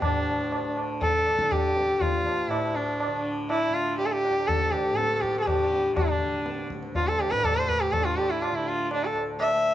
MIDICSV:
0, 0, Header, 1, 4, 480
1, 0, Start_track
1, 0, Tempo, 493016
1, 28, Time_signature, 3, 2, 24, 8
1, 9486, End_track
2, 0, Start_track
2, 0, Title_t, "Sarangi"
2, 0, Program_c, 0, 110
2, 22, Note_on_c, 0, 62, 72
2, 712, Note_off_c, 0, 62, 0
2, 989, Note_on_c, 0, 69, 94
2, 1479, Note_on_c, 0, 67, 92
2, 1494, Note_off_c, 0, 69, 0
2, 1947, Note_on_c, 0, 65, 88
2, 1962, Note_off_c, 0, 67, 0
2, 2437, Note_on_c, 0, 64, 76
2, 2452, Note_off_c, 0, 65, 0
2, 2678, Note_on_c, 0, 62, 70
2, 2693, Note_off_c, 0, 64, 0
2, 3164, Note_off_c, 0, 62, 0
2, 3407, Note_on_c, 0, 64, 91
2, 3636, Note_on_c, 0, 65, 83
2, 3650, Note_off_c, 0, 64, 0
2, 3866, Note_off_c, 0, 65, 0
2, 3872, Note_on_c, 0, 67, 87
2, 3946, Note_on_c, 0, 69, 74
2, 3961, Note_off_c, 0, 67, 0
2, 4010, Note_on_c, 0, 67, 103
2, 4025, Note_off_c, 0, 69, 0
2, 4355, Note_on_c, 0, 69, 95
2, 4370, Note_off_c, 0, 67, 0
2, 4587, Note_on_c, 0, 67, 85
2, 4601, Note_off_c, 0, 69, 0
2, 4827, Note_on_c, 0, 69, 95
2, 4842, Note_off_c, 0, 67, 0
2, 5023, Note_off_c, 0, 69, 0
2, 5023, Note_on_c, 0, 69, 66
2, 5069, Note_on_c, 0, 67, 87
2, 5083, Note_off_c, 0, 69, 0
2, 5249, Note_off_c, 0, 67, 0
2, 5255, Note_on_c, 0, 69, 65
2, 5314, Note_on_c, 0, 67, 86
2, 5329, Note_off_c, 0, 69, 0
2, 5790, Note_off_c, 0, 67, 0
2, 5795, Note_on_c, 0, 62, 76
2, 6481, Note_off_c, 0, 62, 0
2, 6773, Note_on_c, 0, 65, 86
2, 6888, Note_on_c, 0, 69, 89
2, 6902, Note_off_c, 0, 65, 0
2, 7006, Note_on_c, 0, 67, 86
2, 7020, Note_off_c, 0, 69, 0
2, 7115, Note_on_c, 0, 71, 95
2, 7130, Note_off_c, 0, 67, 0
2, 7245, Note_on_c, 0, 69, 99
2, 7260, Note_off_c, 0, 71, 0
2, 7368, Note_on_c, 0, 72, 88
2, 7382, Note_off_c, 0, 69, 0
2, 7478, Note_on_c, 0, 71, 94
2, 7493, Note_off_c, 0, 72, 0
2, 7596, Note_on_c, 0, 67, 85
2, 7611, Note_off_c, 0, 71, 0
2, 7713, Note_on_c, 0, 69, 92
2, 7728, Note_off_c, 0, 67, 0
2, 7830, Note_on_c, 0, 65, 83
2, 7845, Note_off_c, 0, 69, 0
2, 7953, Note_on_c, 0, 67, 92
2, 7967, Note_off_c, 0, 65, 0
2, 8080, Note_on_c, 0, 64, 83
2, 8094, Note_off_c, 0, 67, 0
2, 8203, Note_on_c, 0, 65, 84
2, 8217, Note_off_c, 0, 64, 0
2, 8327, Note_on_c, 0, 64, 82
2, 8341, Note_off_c, 0, 65, 0
2, 8452, Note_on_c, 0, 65, 78
2, 8466, Note_off_c, 0, 64, 0
2, 8681, Note_off_c, 0, 65, 0
2, 8699, Note_on_c, 0, 62, 73
2, 8808, Note_on_c, 0, 69, 66
2, 8823, Note_off_c, 0, 62, 0
2, 8919, Note_off_c, 0, 69, 0
2, 9145, Note_on_c, 0, 76, 106
2, 9486, Note_off_c, 0, 76, 0
2, 9486, End_track
3, 0, Start_track
3, 0, Title_t, "Tanpura"
3, 0, Program_c, 1, 104
3, 0, Note_on_c, 1, 38, 52
3, 0, Note_on_c, 1, 50, 52
3, 34, Note_on_c, 1, 45, 56
3, 626, Note_off_c, 1, 50, 0
3, 626, Note_on_c, 1, 50, 54
3, 1224, Note_off_c, 1, 50, 0
3, 1224, Note_on_c, 1, 50, 55
3, 1808, Note_off_c, 1, 38, 0
3, 1812, Note_on_c, 1, 38, 59
3, 2405, Note_off_c, 1, 45, 0
3, 2409, Note_on_c, 1, 45, 59
3, 3000, Note_off_c, 1, 50, 0
3, 3000, Note_on_c, 1, 50, 60
3, 3603, Note_off_c, 1, 50, 0
3, 3603, Note_on_c, 1, 50, 61
3, 4182, Note_off_c, 1, 38, 0
3, 4185, Note_on_c, 1, 38, 61
3, 4779, Note_off_c, 1, 45, 0
3, 4783, Note_on_c, 1, 45, 59
3, 5375, Note_off_c, 1, 50, 0
3, 5375, Note_on_c, 1, 50, 58
3, 5957, Note_off_c, 1, 50, 0
3, 5957, Note_on_c, 1, 50, 59
3, 6535, Note_off_c, 1, 38, 0
3, 6539, Note_on_c, 1, 38, 57
3, 7130, Note_off_c, 1, 45, 0
3, 7134, Note_on_c, 1, 45, 56
3, 7715, Note_off_c, 1, 50, 0
3, 7715, Note_on_c, 1, 50, 58
3, 8302, Note_off_c, 1, 50, 0
3, 8302, Note_on_c, 1, 50, 62
3, 8888, Note_off_c, 1, 38, 0
3, 8892, Note_on_c, 1, 38, 62
3, 9468, Note_off_c, 1, 45, 0
3, 9486, Note_off_c, 1, 38, 0
3, 9486, Note_off_c, 1, 50, 0
3, 9486, End_track
4, 0, Start_track
4, 0, Title_t, "Tabla"
4, 21, Note_on_c, 9, 60, 96
4, 21, Note_on_c, 9, 64, 81
4, 118, Note_off_c, 9, 60, 0
4, 118, Note_off_c, 9, 64, 0
4, 510, Note_on_c, 9, 60, 71
4, 607, Note_off_c, 9, 60, 0
4, 752, Note_on_c, 9, 60, 58
4, 850, Note_off_c, 9, 60, 0
4, 989, Note_on_c, 9, 63, 73
4, 989, Note_on_c, 9, 64, 71
4, 1086, Note_off_c, 9, 63, 0
4, 1086, Note_off_c, 9, 64, 0
4, 1234, Note_on_c, 9, 60, 59
4, 1331, Note_off_c, 9, 60, 0
4, 1351, Note_on_c, 9, 37, 62
4, 1449, Note_off_c, 9, 37, 0
4, 1476, Note_on_c, 9, 60, 74
4, 1476, Note_on_c, 9, 64, 69
4, 1573, Note_off_c, 9, 60, 0
4, 1573, Note_off_c, 9, 64, 0
4, 1720, Note_on_c, 9, 62, 57
4, 1818, Note_off_c, 9, 62, 0
4, 1959, Note_on_c, 9, 63, 81
4, 1959, Note_on_c, 9, 64, 65
4, 2057, Note_off_c, 9, 63, 0
4, 2057, Note_off_c, 9, 64, 0
4, 2204, Note_on_c, 9, 60, 57
4, 2301, Note_off_c, 9, 60, 0
4, 2441, Note_on_c, 9, 60, 75
4, 2538, Note_off_c, 9, 60, 0
4, 2924, Note_on_c, 9, 60, 77
4, 3022, Note_off_c, 9, 60, 0
4, 3407, Note_on_c, 9, 60, 75
4, 3504, Note_off_c, 9, 60, 0
4, 3890, Note_on_c, 9, 63, 74
4, 3987, Note_off_c, 9, 63, 0
4, 4135, Note_on_c, 9, 60, 61
4, 4232, Note_off_c, 9, 60, 0
4, 4371, Note_on_c, 9, 63, 77
4, 4371, Note_on_c, 9, 64, 69
4, 4469, Note_off_c, 9, 63, 0
4, 4469, Note_off_c, 9, 64, 0
4, 4614, Note_on_c, 9, 60, 59
4, 4711, Note_off_c, 9, 60, 0
4, 4853, Note_on_c, 9, 62, 82
4, 4950, Note_off_c, 9, 62, 0
4, 4975, Note_on_c, 9, 62, 57
4, 5072, Note_off_c, 9, 62, 0
4, 5095, Note_on_c, 9, 37, 57
4, 5192, Note_off_c, 9, 37, 0
4, 5212, Note_on_c, 9, 62, 58
4, 5309, Note_off_c, 9, 62, 0
4, 5330, Note_on_c, 9, 60, 74
4, 5330, Note_on_c, 9, 64, 64
4, 5428, Note_off_c, 9, 60, 0
4, 5428, Note_off_c, 9, 64, 0
4, 5574, Note_on_c, 9, 62, 64
4, 5671, Note_off_c, 9, 62, 0
4, 5810, Note_on_c, 9, 60, 104
4, 5810, Note_on_c, 9, 64, 90
4, 5908, Note_off_c, 9, 60, 0
4, 5908, Note_off_c, 9, 64, 0
4, 6288, Note_on_c, 9, 62, 82
4, 6385, Note_off_c, 9, 62, 0
4, 6408, Note_on_c, 9, 62, 55
4, 6505, Note_off_c, 9, 62, 0
4, 6526, Note_on_c, 9, 37, 60
4, 6623, Note_off_c, 9, 37, 0
4, 6645, Note_on_c, 9, 62, 62
4, 6742, Note_off_c, 9, 62, 0
4, 6766, Note_on_c, 9, 63, 78
4, 6766, Note_on_c, 9, 64, 68
4, 6863, Note_off_c, 9, 63, 0
4, 6863, Note_off_c, 9, 64, 0
4, 7011, Note_on_c, 9, 60, 58
4, 7108, Note_off_c, 9, 60, 0
4, 7128, Note_on_c, 9, 37, 62
4, 7225, Note_off_c, 9, 37, 0
4, 7247, Note_on_c, 9, 60, 75
4, 7247, Note_on_c, 9, 64, 67
4, 7344, Note_off_c, 9, 60, 0
4, 7344, Note_off_c, 9, 64, 0
4, 7486, Note_on_c, 9, 64, 52
4, 7584, Note_off_c, 9, 64, 0
4, 7722, Note_on_c, 9, 63, 78
4, 7722, Note_on_c, 9, 64, 67
4, 7819, Note_off_c, 9, 63, 0
4, 7819, Note_off_c, 9, 64, 0
4, 7961, Note_on_c, 9, 60, 64
4, 8058, Note_off_c, 9, 60, 0
4, 8199, Note_on_c, 9, 60, 77
4, 8297, Note_off_c, 9, 60, 0
4, 8675, Note_on_c, 9, 60, 80
4, 8773, Note_off_c, 9, 60, 0
4, 8914, Note_on_c, 9, 60, 55
4, 9011, Note_off_c, 9, 60, 0
4, 9150, Note_on_c, 9, 60, 79
4, 9248, Note_off_c, 9, 60, 0
4, 9486, End_track
0, 0, End_of_file